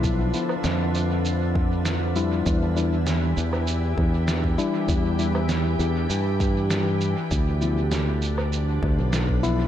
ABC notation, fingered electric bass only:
X:1
M:4/4
L:1/16
Q:1/4=99
K:Ddor
V:1 name="Fingered electric bass" clef=bass
B,,,2 z2 F,,12 | E,,6 E,,4 E,,4 z2 | E,,6 E,,2 G,,6- G,, z | D,,8- D,,2 D,, B,,,4- B,,, |]